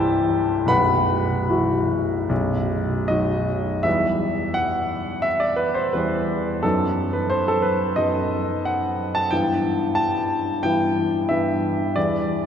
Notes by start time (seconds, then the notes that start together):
Already playing: C1 C2 E3 E4 G4 A4 C5 E5 G5 A5 C6
0.66 B1 B4 F#5 B5
0.70 B0
1.50 E3 E4 F#4
2.29 B0 B1
3.08 F#3 D#4 F#4 D#5
3.83 E2 G3 B3 E4 E5
4.54 F#5
5.22 E5
5.40 D5
5.56 B4
5.74 C5
5.93 E2 G3 B3 E4 B4
6.63 F#2 F#3 B3 D#4 A4
7.13 B4
7.30 C5
7.48 A4
7.62 B4
7.96 F#2 F#3 B3 D#4 D#5
8.65 F#5
9.15 A5
9.31 G2 E3 B3 E4 G5
9.95 A5
10.63 G2 E3 B3 E4 G5
11.29 G2 E3 B3 E4 E5
11.96 E2 G3 B3 E4 D5